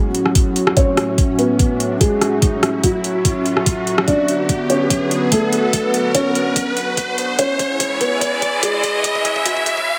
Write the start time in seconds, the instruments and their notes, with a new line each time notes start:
Already playing: supersaw synth A2 F#3 C#4 F#4, analog synth pad C#4 F#4 F#5, riser
0.15 closed hi-hat
0.26 cross-stick
0.35 kick, closed hi-hat
0.56 analog synth pad E5, closed hi-hat
0.67 cross-stick
0.77 felt piano C#4 C#5, kick, closed hi-hat
0.97 cross-stick, closed hi-hat
1.18 kick, closed hi-hat
1.39 felt piano B3 B4, closed hi-hat
1.59 kick, closed hi-hat
1.80 closed hi-hat
2.01 felt piano G#3 G#4, kick, closed hi-hat
2.21 cross-stick, closed hi-hat
2.42 kick, closed hi-hat
2.63 cross-stick, closed hi-hat
2.83 felt piano F#3 F#4, kick, closed hi-hat
3.04 closed hi-hat
3.25 kick, closed hi-hat
3.46 closed hi-hat
3.57 cross-stick
3.66 kick, closed hi-hat
3.87 closed hi-hat
3.98 cross-stick
4.08 supersaw synth D3 B3, analog synth pad B3, felt piano D4 D5, kick, closed hi-hat
4.28 closed hi-hat
4.44 analog synth pad B4
4.49 kick, closed hi-hat
4.70 felt piano C#4 C#5, closed hi-hat
4.90 analog synth pad F#5, kick, closed hi-hat
5.11 closed hi-hat
5.32 felt piano A3 A4, kick, closed hi-hat
5.53 closed hi-hat
5.73 kick, closed hi-hat
5.94 closed hi-hat
6.15 felt piano C#4 C#5, kick, closed hi-hat
6.35 closed hi-hat
6.56 kick, closed hi-hat
6.77 closed hi-hat
6.97 kick, closed hi-hat
7.18 closed hi-hat
7.39 supersaw synth C#3 E3 G#3 E4, felt piano C#4 C#5, analog synth pad E4, kick, closed hi-hat
7.51 analog synth pad C#5
7.59 kick, closed hi-hat
7.74 analog synth pad G#5
7.80 kick, closed hi-hat
8.01 felt piano B3 B4, kick, closed hi-hat
8.21 kick, closed hi-hat
8.42 kick, closed hi-hat
8.63 felt piano G#3 G#4, kick, closed hi-hat
8.83 kick, closed hi-hat
9.04 kick, closed hi-hat
9.15 kick
9.25 kick, closed hi-hat
9.36 kick
9.46 felt piano F#3 F#4, kick, closed hi-hat
9.57 kick
9.66 kick, closed hi-hat
9.77 kick